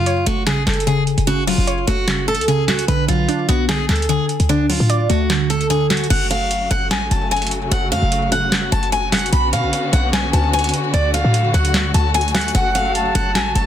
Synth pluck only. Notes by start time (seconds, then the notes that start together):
Already playing: C#3 F#3
0.06 C#5
0.27 A3
0.47 C#3
0.87 C#3
1.27 C#3
1.47 F#3
1.67 C#5
1.88 A3
2.08 C#3
2.48 C#3
2.88 D3
3.08 F#3
3.29 D4
3.49 B3
3.69 D3
4.09 D3
4.49 D3
4.69 F#3
4.90 D5
5.10 A3
5.30 D3
5.70 D3